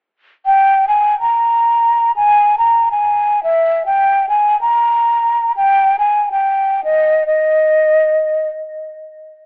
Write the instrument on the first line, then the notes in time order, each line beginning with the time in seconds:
flute
0.46 G5
0.88 G#5
1.20 A#5
2.16 G#5
2.58 A#5
2.91 G#5
3.44 E5
3.86 G5
4.29 G#5
4.61 A#5
5.57 G5
5.99 G#5
6.32 G5
6.84 D#5
7.27 D#5